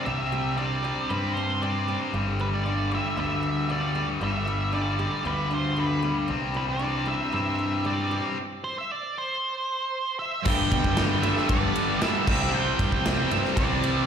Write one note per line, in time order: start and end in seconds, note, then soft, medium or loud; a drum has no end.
0.00 0.32 G3 medium
0.00 1.09 C4 medium
0.00 0.57 D4 medium
0.00 0.84 E4 medium
0.05 0.91 C2 medium
0.05 0.56 C3 medium
0.05 1.36 C3 medium
0.05 0.57 G3 medium
0.05 0.57 C4 medium
0.05 0.54 E5 medium
0.32 0.84 G3 medium
0.57 0.82 C3 medium
0.57 0.83 G3 medium
0.57 0.83 C4 medium
0.57 1.36 D4 medium
0.57 1.11 D5 medium
0.83 1.09 C3 medium
0.83 1.10 G3 medium
0.83 2.39 G3 medium
0.83 1.10 C4 medium
1.09 1.95 G2 medium
1.09 1.61 C3 medium
1.09 1.62 G3 loud
1.09 1.87 C4 medium
1.09 1.62 C4 medium
1.09 1.34 B4 medium
1.34 2.65 D4 medium
1.34 1.62 C5 medium
1.62 1.87 C3 medium
1.62 1.89 G3 medium
1.62 1.88 C4 medium
1.62 2.14 E4 medium
1.62 1.98 D5 medium
1.88 2.12 C3 medium
1.88 2.15 G3 medium
1.88 2.14 C4 medium
1.88 2.13 C4 medium
2.13 2.98 G1 medium
2.13 3.44 G2 medium
2.13 2.65 G2 medium
2.13 2.65 D3 medium
2.13 2.66 G3 medium
2.40 2.91 G3 medium
2.40 2.46 B4 medium
2.54 2.90 D5 medium
2.65 2.91 G2 medium
2.65 2.91 D3 medium
2.65 2.92 G3 medium
2.65 3.42 D4 medium
2.91 3.15 G2 medium
2.91 3.16 D3 medium
2.91 4.47 G3 medium
2.91 3.18 G3 medium
2.91 3.17 E5 medium
3.16 4.03 D2 medium
3.16 3.67 G2 medium
3.16 3.68 D3 medium
3.16 3.69 G3 medium
3.16 3.94 B3 medium
3.16 3.71 E5 medium
3.43 4.72 D4 medium
3.68 3.93 G2 medium
3.68 3.94 D3 medium
3.68 3.95 G3 medium
3.68 5.76 G4 medium
3.68 4.07 D5 medium
3.94 4.19 G2 medium
3.94 4.20 D3 medium
3.94 4.22 G3 medium
3.94 5.24 B3 medium
4.20 5.06 G1 medium
4.20 4.71 G2 medium
4.20 5.51 G2 medium
4.20 4.72 D3 medium
4.20 4.73 G3 medium
4.20 4.71 E5 loud
4.47 4.99 G3 medium
4.72 4.97 G2 medium
4.72 4.98 D3 medium
4.72 4.99 G3 medium
4.72 5.50 D4 medium
4.72 5.22 D5 medium
4.98 5.23 G2 medium
4.98 5.23 D3 medium
4.98 6.54 G3 medium
4.98 5.25 G3 medium
5.24 6.11 D2 medium
5.24 5.75 G2 medium
5.24 5.76 D3 medium
5.24 5.77 G3 medium
5.24 6.01 B3 medium
5.24 5.53 B4 medium
5.51 6.31 D4 medium
5.51 5.77 C5 medium
5.76 6.02 G2 medium
5.76 6.03 D3 medium
5.76 6.04 G3 medium
5.76 7.84 G4 medium
5.76 6.15 B4 medium
6.03 6.28 G2 medium
6.03 6.28 D3 medium
6.03 6.29 G3 medium
6.03 6.29 B3 medium
6.28 7.15 C2 medium
6.28 7.59 C3 medium
6.28 6.79 C3 medium
6.28 6.80 G3 loud
6.28 6.81 C4 medium
6.54 7.05 E3 medium
6.54 6.62 B4 medium
6.69 7.08 D5 medium
6.79 7.06 C3 medium
6.79 7.06 G3 medium
6.79 7.07 C4 medium
6.79 7.58 D4 medium
7.06 7.32 C3 medium
7.06 8.37 E3 medium
7.06 7.33 G3 medium
7.06 7.33 C4 medium
7.06 7.33 E5 medium
7.32 8.19 G2 medium
7.32 7.84 C3 medium
7.32 8.10 G3 medium
7.32 7.84 G3 medium
7.32 7.85 C4 medium
7.32 7.86 E5 medium
7.59 8.37 D4 medium
7.85 8.10 C3 medium
7.85 8.11 G3 medium
7.85 8.12 C4 medium
7.85 8.37 G4 medium
7.85 8.22 D5 medium
8.11 8.36 C3 medium
8.11 8.37 G3 medium
8.11 8.36 G3 medium
8.11 8.37 C4 medium
8.64 8.76 C5 medium
8.78 8.91 E5 medium
8.91 9.17 D5 medium
9.18 10.17 C5 medium
10.19 10.46 E5 medium
10.43 10.96 G2 medium
10.43 10.67 G2 loud
10.43 10.96 D3 medium
10.43 10.98 G3 loud
10.43 12.24 D4 medium
10.43 14.06 G4 medium
10.43 12.24 B4 medium
10.43 14.06 G5 medium
10.43 10.84 G5 loud
10.43 kick loud
10.43 crash loud
10.47 11.22 B3 loud
10.47 11.20 D4 loud
10.72 10.82 B2 loud
10.72 kick medium
10.72 ride medium
10.84 11.38 G2 loud
10.84 11.21 G5 medium
10.84 kick loud
10.97 11.21 G2 loud
10.97 11.22 D3 medium
10.97 11.23 G3 loud
10.97 snare loud
10.97 ride loud
11.21 11.47 G2 medium
11.21 11.48 D3 medium
11.21 11.49 G3 medium
11.21 11.99 B3 medium
11.21 11.99 D4 medium
11.21 11.50 E5 medium
11.21 ride medium
11.37 snare soft
11.49 12.00 G2 loud
11.49 11.71 G2 medium
11.49 12.00 D3 loud
11.49 12.01 G3 loud
11.49 12.02 D5 medium
11.49 kick loud
11.49 ride loud
11.76 ride medium
12.01 12.25 G2 medium
12.01 12.26 D3 medium
12.01 12.26 G3 loud
12.01 12.26 B3 medium
12.01 12.27 D4 medium
12.01 12.26 E5 medium
12.01 snare loud
12.01 ride loud
12.27 12.70 C2 medium
12.27 12.51 C3 medium
12.27 12.52 G3 medium
12.27 12.53 C4 loud
12.27 14.06 E4 medium
12.27 13.05 E4 medium
12.27 14.06 C5 medium
12.27 12.54 E5 medium
12.27 kick loud
12.27 crash loud
12.53 13.04 C3 loud
12.53 13.04 G3 loud
12.53 13.05 C4 loud
12.53 12.90 G5 loud
12.79 12.90 G2 loud
12.79 kick loud
12.79 ride medium
12.92 13.24 C2 loud
12.92 13.28 G5 loud
12.92 kick medium
13.05 13.29 C3 medium
13.05 13.30 G3 medium
13.05 13.31 C4 loud
13.05 13.80 E4 medium
13.05 snare loud
13.05 ride loud
13.30 13.42 G2 medium
13.30 13.55 C3 medium
13.30 13.56 G3 medium
13.30 13.56 C4 medium
13.30 13.38 E5 medium
13.30 ride medium
13.45 snare soft
13.56 14.06 C2 medium
13.56 14.06 C3 loud
13.56 14.06 G3 loud
13.56 14.06 C4 loud
13.56 14.05 D5 medium
13.56 kick loud
13.56 ride loud
13.81 14.06 C3 medium
13.81 14.06 G3 medium
13.81 14.06 C4 medium
13.81 14.06 E4 medium
13.81 ride medium